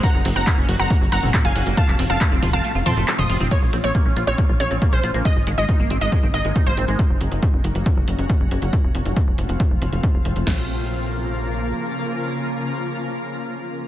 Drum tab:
CC |----------------|----------------|----------------|----------------|
RD |x-x-x-x-x-x-x-x-|x-x-x-x-x-x-x-x-|----------------|----------------|
HH |x-oxx-oxx-oxx-ox|x-oxx-oxx-oxx-ox|x-xxx-xxx-xxx-xx|x-xxx-xxx-xxx-xx|
CP |----x-------x---|-x--x-------x---|----------------|----------------|
SD |----------------|----------------|----------------|----------------|
T2 |-----------oo---|------o---o--o-o|----------------|----------------|
FT |----------------|----------------|----------------|----------------|
BD |o---o---o---o---|o---o-o---------|o---o---o---o---|o---o---o---o---|

CC |----------------|----------------|x---------------|----------------|
RD |----------------|----------------|----------------|----------------|
HH |x-xxx-xxx-xxx-xx|x-xxx-xxx-xxx-xx|----------------|----------------|
CP |----------------|----------------|----------------|----------------|
SD |----------------|----------------|o---------------|----------------|
T2 |----------------|----------------|----------------|----------------|
FT |----------------|----------------|o---------------|----------------|
BD |o---o---o---o---|o---o---o---o---|----------------|----------------|